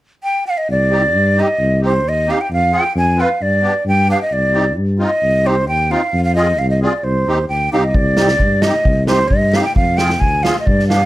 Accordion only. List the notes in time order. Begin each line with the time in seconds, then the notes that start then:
0.90 C4 D#4 G4
1.37 C4 D#4 G4
1.82 C4 D#4 G4
2.27 C4 D#4 G4
2.72 C4 F4 G#4
3.17 C4 F4 B4
3.62 B3 D4 G4
4.08 B3 D4 G4
4.53 C4 D#4 G4
4.99 C4 D#4 F4
5.44 C4 D#4 G4
5.90 C4 D#4 F4
6.36 C4 F4 G#4
6.82 C4 F4 G#4
7.28 C4 D#4 G4
7.72 C4 D#4 G4
8.17 C4 D#4 G4
8.63 C4 D#4 G4
9.07 C4 D#4 G4
9.53 C4 D#4 G4
9.99 C4 F4 G#4
10.44 C4 F4 G#4
10.90 B3 D4 G4